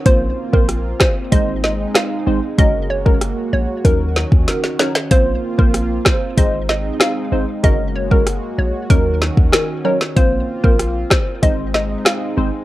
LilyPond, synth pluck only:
\new Staff \with { instrumentName = "Synth pluck" } { \time 4/4 \key bes \minor \tempo 4 = 95 c''8 r16 bes'16 r8 c''16 r16 ees''16 r16 ees''16 r16 f''8. r16 | ees''16 r16 des''16 bes'16 r8 des''16 r16 bes'8. r16 bes'16 r16 des''16 r16 | c''8 r16 bes'16 r8 c''16 r16 ees''16 r16 ees''16 r16 f''8. r16 | ees''16 r16 des''16 bes'16 r8 des''16 r16 bes'8. r16 bes'16 r16 des''16 r16 |
c''8 r16 bes'16 r8 c''16 r16 ees''16 r16 ees''16 r16 f''8. r16 | }